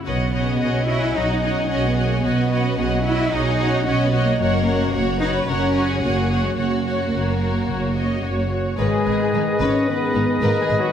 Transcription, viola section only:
\new Staff \with { instrumentName = "Viola section" } { \time 4/4 \key gis \minor \tempo 4 = 110 <fis' cis''>8 <fis' cis''>8 <fis' cis''>8 <fis' cis''>8 <fis' cis''>8 <fis' cis''>8 <fis' cis''>8 <fis' cis''>8 | <fis' cis''>8 <fis' cis''>8 <fis' cis''>8 <fis' cis''>8 <fis' cis''>8 <fis' cis''>8 <fis' cis''>8 <fis' cis''>8 | <fis' cis''>8 <fis' cis''>8 <fis' cis''>8 <fis' cis''>8 <fis' cis''>8 <fis' cis''>8 <fis' cis''>8 <fis' cis''>8 | <fis' cis''>8 <fis' cis''>8 <fis' cis''>8 <fis' cis''>8 <fis' cis''>8 <fis' cis''>8 <fis' cis''>8 <fis' cis''>8 |
gis4. cis'8 b4 \tuplet 3/2 { ais8 gis8 fis8 } | }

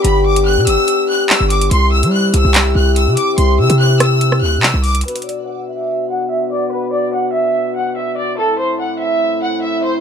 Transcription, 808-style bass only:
\new Staff \with { instrumentName = "808-style bass" } { \clef bass \time 4/4 \key b \phrygian \tempo 4 = 144 g,,4~ g,,16 b,16 g,,16 r4. g,,8. | c,8. g8. c,16 c,8. c,8. c16 r8 | c,8 c16 c4.~ c16 d,16. c16. c,8. | r1 |
r1 | r1 | }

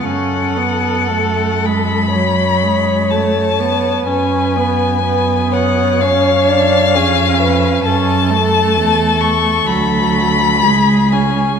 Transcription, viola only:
\new Staff \with { instrumentName = "Viola" } { \time 4/4 \key fis \minor \tempo 4 = 63 cis'8 b8 a8 gis8 fis8 gis8 a8 b8 | cis'8 b8 b4 cis'8 d'8 cis'4 | cis'8 a4. fis4 gis8 cis'8 | }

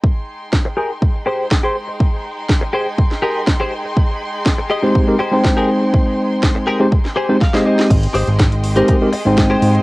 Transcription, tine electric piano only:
\new Staff \with { instrumentName = "Tine electric piano" } { \time 4/4 \key aes \major \tempo 4 = 122 r1 | r1 | r4. r16 <aes c' ees' g' c''>8 <aes c' ees' g' bes'>16 r16 <aes c' ees' c'' g''>4~ <aes c' ees' c'' g''>16~ | <aes c' ees' c'' g''>4.~ <aes c' ees' c'' g''>16 <aes c' ees' g' c''>16 r8. <aes c' ees' g' c''>16 r16 <aes c' ees' g' ees''>8. |
r4. r16 <aes c' ees' g' c''>8 <aes c' ees' g' bes'>16 r16 <aes c' ees' c'' g''>4~ <aes c' ees' c'' g''>16 | }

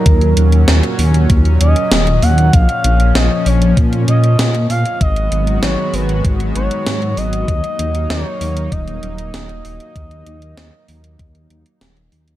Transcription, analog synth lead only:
\new Staff \with { instrumentName = "Analog synth lead" } { \time 4/4 \key ees \minor \tempo 4 = 97 bes'4. r4 ees''4 ges''8 | f''4 ees''8 des''8 r8 ees''4 f''8 | ees''4 des''8 ces''8 r8 des''4 ees''8~ | ees''4 des''4 ees''2~ |
ees''2. r4 | }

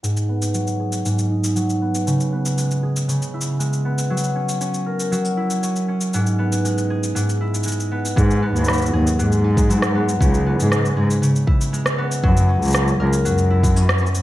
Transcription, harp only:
\new Staff \with { instrumentName = "Harp" } { \time 4/4 \key gis \minor \tempo 4 = 118 gis,8 b8 fis8 gis'8 gis,8 dis'8 fis8 b8 | cis8 b8 gis8 gis'8 cis8 e'8 gis8 b8 | fis8 cis'8 cis'8 ais'8 fis8 e'8 cis'8 cis'8 | gis,8 b8 gis8 gis'8 gis,8 e'8 gis8 b8 |
gis,8 b8 fis8 gis'8 gis,8 dis'8 fis8 b8 | cis8 b8 gis8 gis'8 cis8 e'8 gis8 b8 | fis8 cis'8 cis'8 ais'8 fis8 e'8 cis'8 cis'8 | }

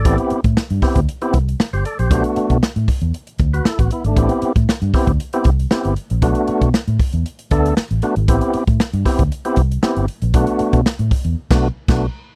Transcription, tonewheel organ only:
\new Staff \with { instrumentName = "Tonewheel organ" } { \time 4/4 \key a \dorian \tempo 4 = 117 << { <a' d''>16 r2. <g' c''>16 <a' d''>16 <g' c''>16~ | <g' c''>16 r2 r8 <fis' b'>16 <e' a'>16 <b fis'>16 <b e'>16 <a d'>16~ | <a d'>16 r2. r8. | r1 |
r1 | r1 | } \\ { <b c' e' g'>8. r8. <b c' e' g'>16 r8 <b c' e' g'>16 r4. | <a b d' fis'>4 r2. | <b c' e' g'>8. r8. <b c' e' g'>16 r8 <b c' e' g'>16 r8 <b c' e' g'>8 r8 | <a b d' fis'>4 r4. <a b d' a'>8 r8 <a b d' fis'>16 r16 |
<b c' e' g'>8. r8. <b c' e' g'>16 r8 <b c' e' g'>16 r8 <b c' e' g'>8 r8 | <a b d' fis'>4 r4 r16 <a b d' fis'>8 r16 <a b d' fis'>8 r8 | } >> }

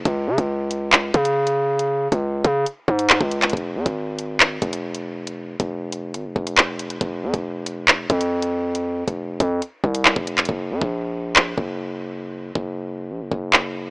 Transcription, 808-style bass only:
\new Staff \with { instrumentName = "808-style bass" } { \clef bass \time 4/4 \key f \phrygian \tempo 4 = 138 des,8 des16 des,4.~ des,16 des4.~ | des8. des,8. des8 r8 aes,8. des,8. | f,,8 f,16 aes,,4.~ aes,,16 f,,4.~ | f,,8. f,,4~ f,,16 aes,,16 f,,16 f,,4. |
f,,8 f,16 f,,4.~ f,,16 f,4.~ | f,8. f,,8. f,8 r8 c,8. f,,8. | ges,,8 ges,16 bes,,4.~ bes,,16 ges,,4.~ | ges,,8. ges,,4~ ges,,16 bes,,16 ges,,16 ges,,4. | }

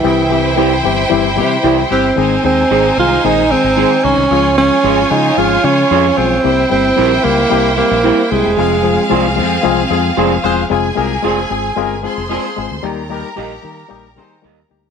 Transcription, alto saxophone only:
\new Staff \with { instrumentName = "Alto saxophone" } { \time 4/4 \key f \minor \tempo 4 = 113 e4. r2 c'8~ | c'8 c'4 f'8 ees'8 c'4 des'8~ | des'8 des'4 ees'8 f'8 des'4 c'8~ | c'8 c'4 bes4 bes4 aes8~ |
aes4. r2 r8 | r1 | r1 | }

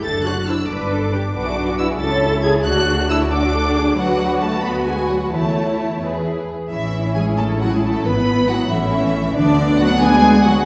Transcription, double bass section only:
\new Staff \with { instrumentName = "Double bass section" } { \clef bass \time 6/8 \key g \lydian \tempo 4. = 91 fis,,4. g,,4. | \key a \major b,,4. cis,4. | d,2. | d,2. |
e,4. e,4 r8 | a,,2. | gis,,4. a,,4. | d,2. | }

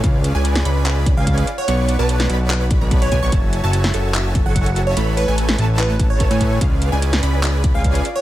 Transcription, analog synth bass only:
\new Staff \with { instrumentName = "Analog synth bass" } { \clef bass \time 4/4 \key cis \phrygian \tempo 4 = 146 cis,8. cis,8. cis,4~ cis,16 cis,8. r8 | b,,8. b,,8. b,,4~ b,,16 b,,8. b,,16 b,,16 | fis,,8. fis,,8. fis,,4~ fis,,16 fis,,4~ fis,,16 | a,,8. a,,8. a,,4.~ a,,16 a,8. |
cis,8. cis,8. cis,4~ cis,16 cis,8. r8 | }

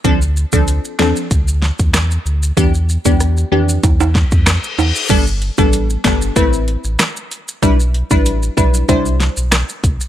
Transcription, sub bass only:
\new Staff \with { instrumentName = "Sub bass" } { \clef bass \time 4/4 \key e \phrygian \tempo 4 = 95 d,8. d,8 r16 e,16 r16 d,8. e,8. d,8 | e,8. e,8. f,8 e,8. f,8 r16 e,16 r16 | g,,8. a,,8. g,,8 a,,8. a,,16 r4 | b,,8. a,,8. b,,8 c,8. b,,8 r16 c,16 r16 | }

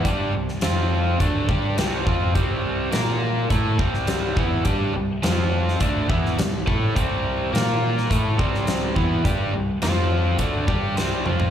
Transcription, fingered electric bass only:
\new Staff \with { instrumentName = "Fingered electric bass" } { \clef bass \time 4/4 \key c \mixolydian \tempo 4 = 104 g,8 c,8 f,4 d,8 g,8 c,8 f,8 | c,4 bes,4 a,8 c,4 e,8 | g,8 c,8 f,4 d,8 e,8 c,8 a,8 | c,4 bes,4 a,8 c,4 e,8 |
g,8 c,8 f,4 d,8 g,8 c,8 f,8 | }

